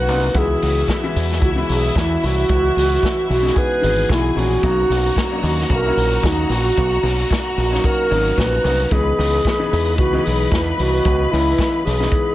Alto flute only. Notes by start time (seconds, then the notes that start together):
Already playing: B4
0.38 G#4
1.44 F#4
1.72 G#4
1.98 E4
2.25 F#4
3.31 F#4
3.58 B4
4.12 E4
4.38 F#4
5.45 F#4
5.73 A#4
6.26 D#4
6.54 F#4
7.58 F#4
7.85 A#4
8.38 B4
8.92 G#4
9.98 F#4
10.24 G#4
10.51 E4
10.78 F#4
11.31 E4
11.85 G#4